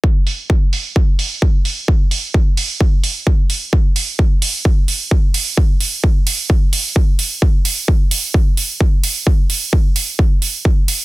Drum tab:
HH |-o-o-o-o|-o-o-o-o|-o-o-o-o|-o-o-o-o|
BD |o-o-o-o-|o-o-o-o-|o-o-o-o-|o-o-o-o-|

HH |-o-o-o-o|-o-o-o-o|
BD |o-o-o-o-|o-o-o-o-|